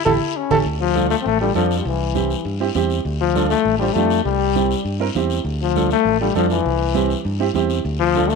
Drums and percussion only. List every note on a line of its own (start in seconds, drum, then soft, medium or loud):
0.06 low conga loud
0.06 long guiro loud
0.51 low conga loud
0.51 long guiro loud
0.65 high conga soft
0.65 long guiro medium
0.96 high conga medium
0.96 short guiro medium
1.10 short guiro medium
1.25 high conga soft
1.25 long guiro medium
1.55 high conga medium
1.55 short guiro medium
1.71 short guiro medium
1.85 high conga soft
1.85 long guiro medium
2.15 high conga medium
2.15 short guiro medium
2.30 short guiro medium
2.45 high conga soft
2.45 long guiro medium
2.75 high conga medium
2.75 short guiro medium
2.90 short guiro medium
3.05 high conga soft
3.05 long guiro medium
3.36 high conga medium
3.36 short guiro medium
3.50 short guiro medium
3.65 high conga soft
3.65 long guiro medium
3.95 high conga medium
3.95 short guiro medium
4.10 short guiro medium
4.25 high conga soft
4.25 long guiro medium
4.55 high conga medium
4.55 short guiro medium
4.71 short guiro medium
4.85 high conga soft
4.85 long guiro medium
5.15 high conga medium
5.15 short guiro medium
5.30 short guiro medium
5.45 high conga soft
5.45 long guiro medium
5.76 high conga medium
5.76 short guiro medium
5.90 short guiro medium
6.06 high conga soft
6.06 long guiro medium
6.35 high conga medium
6.35 short guiro medium
6.50 short guiro medium
6.65 high conga soft
6.65 long guiro medium
6.95 high conga medium
6.95 short guiro medium
7.10 short guiro medium
7.25 high conga soft
7.25 long guiro medium
7.54 high conga medium
7.54 short guiro medium
7.70 short guiro medium
7.85 high conga soft
7.85 long guiro medium
8.15 high conga medium
8.15 short guiro medium
8.30 short guiro medium